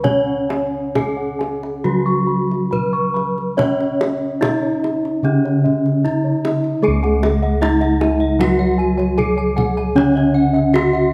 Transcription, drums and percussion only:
0.04 kendang high, kendang low
0.50 kendang high
0.95 kendang slap, kendang high, kendang low
1.41 kendang slap, kendang high
1.63 kendang slap
1.86 kendang slap
2.51 kendang slap
2.73 kendang low
3.16 kendang slap
3.38 kendang slap
3.59 kendang high, kendang low
3.81 kendang slap
4.01 kendang slap, kendang high
4.42 kendang slap, kendang high, kendang low
4.84 kendang high
5.05 kendang slap
5.25 kendang slap
5.45 kendang slap
5.66 kendang low
5.86 kendang slap
6.05 kendang low
6.45 kendang slap, kendang high
6.64 kendang slap
7.04 kendang slap
7.23 kendang high
7.43 kendang slap
7.63 kendang high
7.81 kendang slap
8.01 kendang high
8.41 kendang low
8.99 kendang slap
9.19 kendang low
9.58 kendang low
9.78 kendang slap
9.98 kendang high
10.17 kendang slap
10.56 kendang slap
10.76 kendang high
10.95 kendang slap

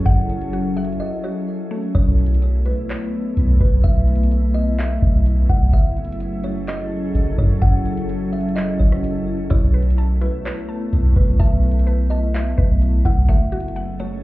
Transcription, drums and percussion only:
0.06 kick, closed hi-hat
0.30 closed hi-hat
0.41 closed hi-hat
0.53 closed hi-hat
0.77 closed hi-hat
0.85 closed hi-hat
0.92 closed hi-hat
1.95 kick, closed hi-hat
2.19 closed hi-hat
2.26 closed hi-hat
2.34 closed hi-hat
2.42 closed hi-hat
2.66 closed hi-hat
2.89 clap, closed hi-hat
3.37 closed hi-hat
3.60 kick
3.84 kick, closed hi-hat
4.08 closed hi-hat
4.16 closed hi-hat
4.23 closed hi-hat
4.31 closed hi-hat
4.55 closed hi-hat
4.79 clap, closed hi-hat
5.02 kick
5.26 closed hi-hat
5.49 kick
5.73 kick, closed hi-hat
5.97 closed hi-hat
6.05 closed hi-hat
6.12 closed hi-hat
6.20 closed hi-hat
6.44 closed hi-hat
6.67 clap, closed hi-hat
7.15 closed hi-hat
7.38 kick
7.62 kick, closed hi-hat
7.86 closed hi-hat
7.97 closed hi-hat
8.09 closed hi-hat
8.33 closed hi-hat
8.41 closed hi-hat
8.49 closed hi-hat
8.57 clap, closed hi-hat
8.80 kick
8.92 cross-stick
9.04 closed hi-hat
9.51 kick, closed hi-hat
9.75 closed hi-hat
9.83 closed hi-hat
9.90 closed hi-hat
9.98 closed hi-hat
10.21 closed hi-hat
10.45 clap, closed hi-hat
10.93 closed hi-hat
11.16 kick
11.40 kick, closed hi-hat
11.64 closed hi-hat
11.71 closed hi-hat
11.79 closed hi-hat
11.87 closed hi-hat
12.11 closed hi-hat
12.34 clap, closed hi-hat
12.58 kick
12.82 closed hi-hat
13.05 kick
13.29 kick, closed hi-hat
13.52 closed hi-hat
13.60 closed hi-hat
13.68 closed hi-hat
13.76 closed hi-hat
14.00 closed hi-hat

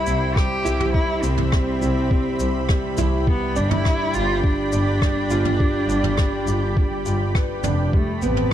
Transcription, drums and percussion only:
0.06 shaker
0.36 kick, cross-stick
0.66 shaker
0.80 mid tom
0.94 kick
1.23 shaker
1.38 mid tom
1.52 kick, cross-stick
1.82 shaker
2.11 kick
2.39 shaker
2.69 kick, cross-stick
2.97 mid tom, shaker
3.27 kick
3.56 shaker
3.71 mid tom
3.85 kick, cross-stick
4.14 shaker
4.44 kick
4.72 shaker
5.02 kick, cross-stick
5.30 shaker
5.45 mid tom
5.60 kick
5.89 shaker
6.04 mid tom
6.17 kick, cross-stick
6.47 shaker
6.77 kick
7.06 shaker
7.35 kick, cross-stick
7.64 mid tom, shaker
7.93 kick
8.22 shaker
8.37 mid tom

